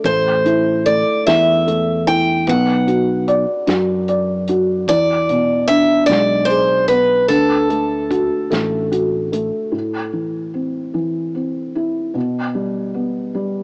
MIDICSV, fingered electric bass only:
0, 0, Header, 1, 2, 480
1, 0, Start_track
1, 0, Tempo, 806452
1, 29, Time_signature, 6, 3, 24, 8
1, 8113, End_track
2, 0, Start_track
2, 0, Title_t, "Fingered electric bass"
2, 0, Program_c, 0, 33
2, 29, Note_on_c, 0, 33, 79
2, 612, Note_off_c, 0, 33, 0
2, 759, Note_on_c, 0, 40, 79
2, 1475, Note_on_c, 0, 35, 89
2, 1484, Note_off_c, 0, 40, 0
2, 2050, Note_off_c, 0, 35, 0
2, 2189, Note_on_c, 0, 42, 84
2, 2908, Note_off_c, 0, 42, 0
2, 2908, Note_on_c, 0, 40, 82
2, 3486, Note_off_c, 0, 40, 0
2, 3626, Note_on_c, 0, 35, 91
2, 4348, Note_off_c, 0, 35, 0
2, 4348, Note_on_c, 0, 38, 76
2, 4928, Note_off_c, 0, 38, 0
2, 5072, Note_on_c, 0, 33, 73
2, 5653, Note_off_c, 0, 33, 0
2, 8113, End_track
0, 0, End_of_file